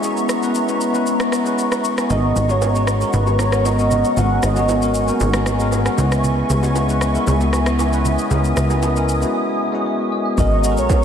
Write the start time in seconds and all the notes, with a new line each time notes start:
Already playing: G#3 B3 C#4 E4 F#4 A#4 B4 C#5 E5 A#5 C#6
0.02 G#3 B3 C#4 E4 G#4, shaker
0.17 shaker
0.29 cross-stick, shaker
0.41 G#3 B3 C#4 E4 B4, shaker
0.55 shaker
0.67 G#3 B3 C#4 E4 B4, shaker
0.81 shaker
0.93 G#3 B3 C#4 E4 B4, shaker
1.06 shaker
1.20 cross-stick, shaker
1.32 cross-stick, shaker
1.44 G#3 B3 C#4 E4 B4, shaker
1.58 shaker
1.71 F#5, cross-stick, shaker
1.84 A#5, shaker
1.98 G#5, cross-stick, shaker
2.08 G#1 G#3 B3 C#4 F#4 A#4 D#5 F#5 A#5, low conga, shaker
2.36 G#1, low bongo, shaker
2.48 G#3 B3 C#4 F#4 B4 C#5, low bongo, shaker
2.62 high bongo, shaker
2.74 G#3 B3 C#4 F#4 G#4, shaker
2.87 cross-stick, shaker
3.00 G#3 B3 C#4 F#4 A#4, shaker
3.13 G#1 B4, low conga, shaker
3.27 low bongo, shaker
3.39 C#5, cross-stick, high bongo, low bongo, shaker
3.51 G#3 B3 C#4 F#4 A#4, cross-stick, shaker
3.65 D#5, high bongo, shaker
3.77 G#3 B3 C#4 F#4 A#4, shaker
3.91 low conga, shaker
4.04 shaker
4.16 G#1 G#3 B3 C#4 F#4 A#4 F#5 G#5, low conga, shaker
4.43 G#1 D#5, cross-stick, low bongo, shaker
4.55 G#3 B3 C#4 F#4 G#4, low bongo, shaker
4.68 high bongo, shaker
4.81 G#3 B3 C#4 F#4 A#4, shaker
4.94 shaker
5.06 G#3 A#3 C#4 F#4 A#4, shaker
5.13 B3
5.20 G#1, low conga, shaker
5.33 cross-stick, low bongo, shaker
5.46 cross-stick, high bongo, low bongo, shaker
5.58 G#3 B3 C#4 F#4 A#4, shaker
5.72 high bongo, shaker
5.84 G#3 B3 C#4 F#4 A#4, cross-stick, shaker
5.96 C#2 G#3 B3 C#4 E4 B4 E5 C#6, low conga, shaker
6.12 cross-stick, shaker
6.24 low conga, shaker
6.50 C#2, low bongo, shaker
6.62 G#3 B3 C#4 E4 C#5, low bongo, shaker
6.75 high bongo, shaker
6.88 G#3 B3 C#4 E4 B4, shaker
7.01 cross-stick, shaker
7.14 G#3 B3 C#4 E4 A#4, shaker
7.27 C#2, low conga, shaker
7.41 low bongo, shaker
7.53 cross-stick, high bongo, low bongo, shaker
7.65 G#3 B3 C#4 E4 G#4, cross-stick, shaker
7.79 high bongo, shaker
7.91 G#3 B3 C#4 E4 B4, shaker
8.05 D#6, low conga, shaker
8.18 shaker
8.29 C#2 G#3 B3 C#4 E4 A#4, low conga, shaker
8.44 shaker
8.57 C#2, cross-stick, low bongo, shaker
8.69 G#3 B3 C#4 E4 G#4, low bongo, shaker
8.82 high bongo, shaker
8.94 G#3 B3 C#4 E4 A#4, shaker
9.09 shaker
9.20 G#3 B3 C#4 E4 F#4, shaker
9.72 G#3 B3 C#4 E4 F#4
9.86 C#5
10.12 D#5
10.25 E5
10.36 G#1 G#3 B3 C#4 F#4 A#4 D#5 F#5 A#5 C#6, kick, low conga, shaker
10.62 G#3 B3 C#4 F#4 A4, shaker
10.72 A#4
10.77 B1 C#5, shaker
10.89 kick, high bongo, shaker